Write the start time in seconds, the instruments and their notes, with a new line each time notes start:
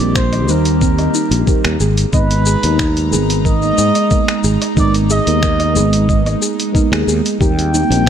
Already playing: analog synth pad D#3 A#3 C4 G4, synth arpeggio sound D#4, muted trumpet D5
0.00 fretless electric bass A#1, fm electric piano G3 A#3 C4 D#4 A#4
0.15 synth arpeggio sound C5, muted trumpet C5, finger snap, kick, shaker
0.33 closed hi-hat, low woodblock, shaker
0.47 fretless electric bass D#2, fm electric piano G3 A#3 C4 D#4 C5, synth arpeggio sound D#4, shaker
0.51 muted trumpet A#4
0.65 closed hi-hat, shaker
0.81 synth arpeggio sound C4, kick, shaker
0.98 fm electric piano G3 A#3 C4 D#4 D#5, closed hi-hat, low woodblock, shaker
1.14 synth arpeggio sound D#4, shaker
1.31 fretless electric bass A#1, closed hi-hat, shaker
1.46 fm electric piano G3 A#3 C4 D#4 A#4, synth arpeggio sound G4, kick, shaker
1.65 fretless electric bass D#2, finger snap, closed hi-hat, shaker
1.80 fretless electric bass G#1, analog synth pad G#3 D#4 A#5, synth arpeggio sound G#4, shaker
1.98 closed hi-hat, shaker
2.13 fretless electric bass G#1, fm electric piano G#3 B3 D#4 B4, muted trumpet B4, synth arpeggio sound D#5, kick, shaker
2.31 closed hi-hat, shaker
2.46 synth arpeggio sound G#4, shaker
2.63 fretless electric bass D#2, fm electric piano G#3 B3 D#4 B4, closed hi-hat, shaker
2.79 synth arpeggio sound D#4, finger snap, kick, shaker
2.97 closed hi-hat, shaker
3.11 fretless electric bass G#1, fm electric piano G#3 B3 D#4 A#4 B4, synth arpeggio sound G#4, shaker
3.30 closed hi-hat, shaker
3.45 synth arpeggio sound A#4, muted trumpet D#5, kick, shaker
3.61 fm electric piano G#3 A#3 B3 D#4 D#5, shaker
3.78 fretless electric bass G#2, synth arpeggio sound G#4, shaker
3.95 closed hi-hat, low woodblock, shaker
4.09 fm electric piano G#3 A#3 B3 D#4 A#4, synth arpeggio sound D#5, kick, shaker
4.28 finger snap, closed hi-hat, shaker
4.44 fretless electric bass G#1, synth arpeggio sound G#4, shaker
4.62 closed hi-hat, low woodblock, shaker
4.75 fretless electric bass G#1, fm electric piano G#3 A#3 B3 D#4 A#4, synth arpeggio sound D#4, kick, shaker
4.79 muted trumpet D5
4.94 closed hi-hat, shaker
5.10 synth arpeggio sound G#4, muted trumpet D#5, shaker
5.25 fretless electric bass D#2, fm electric piano G#3 A#3 B3 D#4 A#4, closed hi-hat, shaker
5.43 synth arpeggio sound A#4, finger snap, kick, shaker
5.60 closed hi-hat, low woodblock, shaker
5.74 fretless electric bass G#1, fm electric piano G#3 B3 D#4 A#4 B4, synth arpeggio sound G#4, shaker
5.93 closed hi-hat, shaker
6.09 synth arpeggio sound D#5, kick, shaker
6.23 fm electric piano G#3 A#3 B3 D#4 D#5, closed hi-hat, low woodblock, shaker
6.42 synth arpeggio sound G#4, shaker
6.60 closed hi-hat, shaker
6.72 fm electric piano G#3 A#3 B3 D#4 A#4, synth arpeggio sound D#4, kick, shaker
6.90 fretless electric bass D#2, fm electric piano G#3 A#3 B3 D#4 G#4, finger snap, closed hi-hat, shaker
7.07 fretless electric bass D#2, synth arpeggio sound G#4, shaker
7.26 closed hi-hat, shaker
7.38 fretless electric bass D#2, analog synth pad D#3 A#3 C4 G4, fm electric piano G3 A#3 C4 D#4 A#4, synth arpeggio sound G4, muted trumpet G5, kick, shaker
7.59 closed hi-hat, shaker
7.74 synth arpeggio sound D#4, high conga, shaker
7.89 fretless electric bass A#1, fm electric piano G3 A#3 C4 D#4 A#4, closed hi-hat, shaker